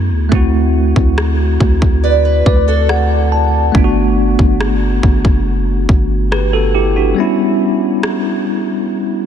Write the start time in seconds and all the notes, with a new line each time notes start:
Already playing: F#2 A3 B3 E4 F#4
0.11 D2
0.29 D2 A3 C4 E4, kick
0.35 F#4
0.96 D2, kick
1.18 cross-stick
1.60 D2, kick
1.82 kick
2.04 B4 D5
2.25 B4
2.46 D2 D5, kick
2.68 F#4 A4
2.89 F#5, cross-stick
3.32 A5
3.72 G1 A3 B3 D4, kick
3.78 F4
3.84 F#4
4.39 G1, kick
4.61 cross-stick
5.03 G1, kick
5.25 F#1, kick
5.89 G1, kick
6.32 G4 B4, cross-stick
6.53 F#4 A4
6.75 E4 G4
6.96 D4 F#4
7.14 G3 B3 C#4
7.20 E4
8.03 cross-stick